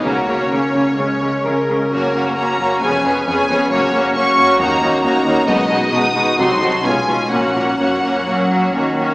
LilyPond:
<<
  \new Staff \with { instrumentName = "Violin section" } { \time 4/4 \key fis \major \tempo 4 = 131 cis''2.~ cis''8 r8 | ais'4 ais''4 gis''4 gis''4 | cis''4 cis'''4 ais''4 ais''4 | dis''4 dis'''4 c'''4 gis''4 |
fis''2.~ fis''8 r8 | }
  \new Staff \with { instrumentName = "Violin section" } { \time 4/4 \key fis \major <fis' ais'>8 <fis' ais'>8 cis'4 cis''4 ais'4 | <fis' cis''>8 <fis' cis''>8 <fis' cis''>8 <fis' cis''>8 <gis' cis''>8 <gis' cis''>8 <gis' cis''>8 <gis' cis''>8 | <fis' cis''>8 <fis' cis''>8 <fis' cis''>8 <fis' cis''>8 <fis' cis''>8 <fis' cis''>8 <fis' cis''>8 <fis' cis''>8 | <fis' b'>8 <fis' b'>8 <fis' b'>8 <fis' b'>8 <ges' a'>8 <ges' a'>8 <eis' gis'>8 <eis' gis'>8 |
<fis' cis''>8 <fis' cis''>8 <fis' cis''>8 <fis' cis''>8 <fis' cis''>8 <fis' cis''>8 <fis' cis''>8 <fis' cis''>8 | }
  \new Staff \with { instrumentName = "Harp" } { \time 4/4 \key fis \major cis8 cis'8 fis'8 ais'8 cis8 cis'8 eis'8 gis'8 | fis,8 ais8 cis'8 fis'8 eis,8 b8 cis'8 gis'8 | fis,8 ais8 cis'8 fis'8 dis8 cis'8 fis'8 ais'8 | b,8 gis8 dis'8 fis'8 c8 <ees' ges'>8 b,8 <cis' eis'>8 |
ais,8 ais8 cis'8 fis'8 ais,8 ais8 cis'8 fis'8 | }
  \new Staff \with { instrumentName = "Viola section" } { \time 4/4 \key fis \major <ais cis'>8 <ais cis'>8 <ais cis'>8 <ais cis'>8 <gis cis'>8 <gis cis'>8 <gis cis'>8 <gis cis'>8 | <ais cis'>8 <ais cis'>8 <ais cis'>8 <ais cis'>8 <b cis'>8 <b cis'>8 <b cis'>8 <b cis'>8 | <ais cis'>8 <ais cis'>8 <ais cis'>8 <ais cis'>8 <ais dis'>8 <ais dis'>8 <ais dis'>8 <ais dis'>8 | <gis dis'>8 <gis dis'>8 <gis dis'>8 <gis dis'>8 <ges ees'>8 <ges ees'>8 <gis cis'>8 <gis cis'>8 |
<ais cis'>8 <ais cis'>8 <ais cis'>8 <ais cis'>8 <ais cis'>8 <ais cis'>8 <ais cis'>8 <ais cis'>8 | }
  \new Staff \with { instrumentName = "Cello section" } { \clef bass \time 4/4 \key fis \major cis8 cis8 cis8 cis8 cis8 cis8 cis8 cis8 | fis,8 fis,8 fis,8 fis,8 eis,8 eis,8 eis,8 eis,8 | fis,8 fis,8 fis,8 fis,8 dis,8 dis,8 dis,8 dis,8 | b,8 b,8 b,8 b,8 c8 c8 b,8 b,8 |
ais,8 ais,8 fis,4 fis4 dis4 | }
  \new Staff \with { instrumentName = "Double bass section" } { \clef bass \time 4/4 \key fis \major cis,8 r4. cis,8 r4. | fis,,8 r4. eis,,8 r4. | fis,,8 r4. dis,8 r4. | b,,8 r4. c,8 r8 b,,8 r8 |
ais,,8 r2. r8 | }
>>